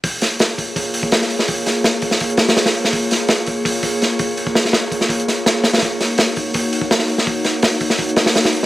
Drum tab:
HH |o---o---o---o---o---o---o---o---|o---o---o---o---o-x-o-o-o-o-o---|o---o---o---o---o---o---o---o---|o---o---o---o---o-x-o---o---o-oo|
SD |----o---o---------------o-o---o-|----o---o-----o-----o-o-o-o---o-|----o---o---------------o-------|----o-o-o-----o-----o---o---o-oo|
BD |o-----------o---o-----o---------|o-----------o---o---------------|o-----------o---o---o-------o---|--o---------o---o---------------|

HH |o---o---o---o---o---o---o---o---|o---o---o---o---o-x-o-o-o-o-o---|
SD |----o---o---------------o-o---o-|----o---o-----o-----o-o-o-o-----|
BD |o-----------o---o-----o---------|o-----------o---o---------------|